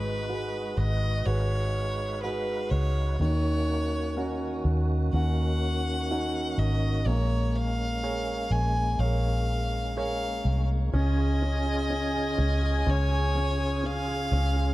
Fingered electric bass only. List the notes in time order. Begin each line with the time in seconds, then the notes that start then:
Already playing: G#1
0.77 G#1
1.26 G#1
2.71 C#2
3.20 D#2
4.65 D#2
5.13 D#2
6.58 G#1
7.06 A#1
8.51 A#1
8.99 A#1
10.45 C2
10.93 C#2
12.39 C#2
12.87 C#2
14.32 C#2